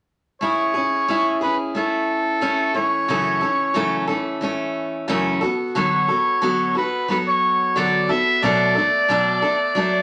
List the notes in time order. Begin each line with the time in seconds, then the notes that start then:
0.41 A3 C#4 E4 G#4 C#5
0.74 C#4 E4 G#4
1.08 A3 C#4 E4 G#4
1.41 C#4 E4 G#4 B4
1.75 A3 C#4 E4 A4
2.41 A3 C#4 E4
2.74 E3 A3 C#4 A4 C#5
3.08 F#2 C#3 E3 A3 C#4 A4
3.41 E3 A3 C#4 A4
3.74 F#2 C#3 E3 A3 C#4 A4
4.07 E3 A3 C#4 A4
4.41 E3 A3 C#4 A4
5.08 F#2 C#3 E3 A3 C#4 A4
5.41 B3 F#4 A4
5.75 D3 F#3 B3 F#4 A4 C#5
6.08 B3 F#4 A4
6.42 D3 F#3 B3 F#4 A4
6.75 B3 F#4 A4 B4
7.08 F#3 B3 F#4 A4 B4
7.28 C#5
7.76 D3 F#3 B3 F#4 A4 D5
8.09 B3 F#4 A4 E5
8.43 B2 F#3 A3 D4 A4 D5
8.75 A3 D4 A4
9.09 B2 F#3 A3 D4 A4
9.42 A3 D4 A4
9.75 F#3 A3 D4 A4